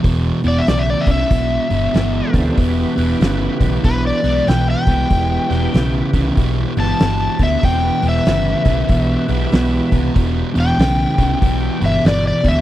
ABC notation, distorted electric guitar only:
X:1
M:4/4
L:1/8
Q:"Swing" 1/4=95
K:Em
V:1 name="Distorted electric guitar" clef=bass
[E,,B,,] [E,,B,,] [E,,^C,] [E,,C,] [E,,B,,] [E,,B,,] [E,,B,,] [E,,B,,] | [E,,B,,] [E,,B,,] [E,,^C,] [E,,C,] [E,,B,,] [E,,B,,] [E,,B,,] [E,,B,,] | [E,,B,,] [E,,B,,] [E,,^C,] [E,,C,] [E,,B,,] [E,,B,,] [E,,B,,] [E,,B,,] | [E,,B,,] [E,,B,,] [E,,^C,] [E,,C,] [E,,B,,] [E,,B,,] [E,,B,,] [E,,B,,] |
[E,,B,,] [E,,B,,] [E,,^C,] [E,,C,] [E,,B,,] [E,,B,,] [E,,B,,] [E,,B,,] |]